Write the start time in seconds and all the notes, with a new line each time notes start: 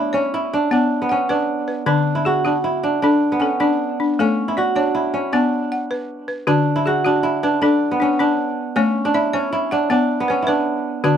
Already playing: B3 D4 E4 A4
0.13 C#4 C#5
0.34 E4
0.53 D4
0.71 B3 D4 F#5
1.02 B3
1.09 C#4 F#5
1.29 D4 B4
1.68 B4
1.86 D3 D4
2.15 E4
2.25 F#4 G#4
2.45 D4 F#4
2.64 E4
2.83 D4
3.02 D4 A4
3.32 B3
3.40 C#4 A4
3.60 D4
4.00 D4
4.19 A3 C#4 A4
4.48 E4
4.57 F#4 D5
4.76 D4 C#5
4.95 E4
5.14 C#4
5.33 B3 D4 F#5
5.72 F#5
5.91 B4
6.28 B4
6.47 D3 D4 F#4
6.76 E4
6.86 F#4 G#4
7.05 D4 F#4
7.23 E4
7.43 D4 B4
7.62 D4 A4
7.91 B3
8.00 C#4 D4
8.19 D4
8.76 A3 C#4 C#5
9.05 D4
9.14 E4 D5
9.33 C#4 C#5
9.53 E4
9.71 D4 F#5
9.90 B3 D4 F#5
10.20 B3
10.28 C#4 B4
10.42 E4
10.47 D4 B4
11.04 D3 D4 F#4